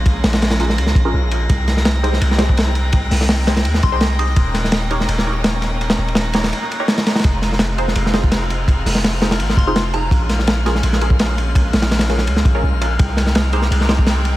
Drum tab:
RD |x---x-x-x-x-x---x---x-------x---|x---x---x---x---x---x---x---x---|x-------x---x-x-x---x---x---x---|x---x---x---x---x-------x---x---|
HH |--------------------------------|--------------------------------|----o---------------------------|--------------------------------|
SD |----o-o-o-o-o-o---o-------------|----o-o-o-----o---o-o---o-------|----o-o-o---o-o---o-----o-------|----o-o-o-----o---o-----o---o---|
BD |o-------------------o-----------|o---------------------o---------|o-------------------o-----------|o-------------------------------|

RD |x-x---x-x---x-x-x---x---x-x-x-xx|x---x---x---x---x---x---x---x---|x-------x---x-x-x---x---x---x---|x---x---x---x---x---x---x---x---|
HH |--------------------------------|--------------------------------|----o---------------------------|--------------------------------|
SD |--o-----o---o-o---------o-o-o-oo|----o-o-o-----o---o-o---o-------|----o-o-o---o-o---o-----o-------|----o-o-o---o-o---o-----o-------|
BD |--------------------------------|o---------------------o---------|o-------------------o-----------|o---------------------o---------|

RD |x---x-x-x-x-x---x---x-------x---|x---x---x---x---x---x---x---x---|
HH |--------------------------------|--------------------------------|
SD |----o-o-o-o-o-o---o-------------|----o-o-o-----o---o-o---o-------|
BD |o-------------------o-----------|o---------------------o---------|